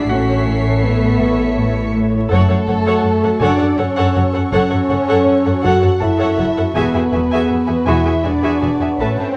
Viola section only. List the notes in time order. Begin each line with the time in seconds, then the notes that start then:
0.11 A4
2.30 A4
2.48 A4
2.67 A4
2.86 A4
3.23 A4
3.41 A4
3.59 A4
3.78 A4
3.98 A4
4.16 A4
4.34 A4
4.53 A4
4.71 A4
4.90 A4
5.08 A4
5.45 A4
5.64 A4
5.81 A4
6.01 A4
6.18 A4
6.37 A4
6.57 A4
6.75 F#4 G#4
6.94 F#4 G#4
7.14 F#4 G#4
7.32 F#4 G#4
7.67 F#4 G#4
7.86 F#4 G#4
8.05 F#4 G#4
8.24 F#4 G#4
8.41 F#4 G#4
8.61 F#4 G#4
8.79 F#4 G#4
8.99 A4 B4
9.18 A4 B4